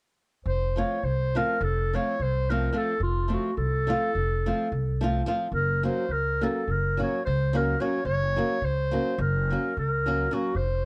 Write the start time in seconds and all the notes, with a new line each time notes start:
0.46 F1 C5
0.76 F3 A3 C4 F4 C#5
1.03 C2 C5
1.35 F3 A3 C4 F4 A#4
1.61 F1 A4
1.93 F3 A3 C4 F4 C#5
2.20 C2 C5
2.50 F3 A3 C4 F4 A#4
2.72 F3 A3 C4 F4
2.77 A4
3.00 F1 F4
3.28 F3 A3 C4 F4
3.34 F#4
3.57 C2 A4
3.87 F3 A3 C4 F4
4.15 F1
4.46 F3 A3 C4 F4
4.72 C2
5.01 F3 A3 C4 F4
5.26 F3 A3 C4 F4
5.52 F#1 A#4
5.83 F#3 A#3 C#4 F#4 C5
6.09 C#2 A#4
6.41 F#3 A#3 C#4 F#4 A4
6.67 F#1 A#4
6.97 F#3 A#3 C#4 F#4
7.02 C#5
7.25 C#2 C5
7.53 F#3 A#3 C#4 F#4 A#4
7.80 F#3 A#3 C#4 F#4 C#5
8.05 F#1 C#5
8.36 F#3 A#3 C#4 F#4
8.62 C#2 C5
8.91 F#3 A#3 C#4 F#4
9.18 F#1 A#4
9.50 F#3 A#3 C#4 F#4
9.77 C#2 A#4
10.06 F#3 A#3 C#4 F#4
10.31 F#3 A#3 C#4 F#4
10.55 F1 C5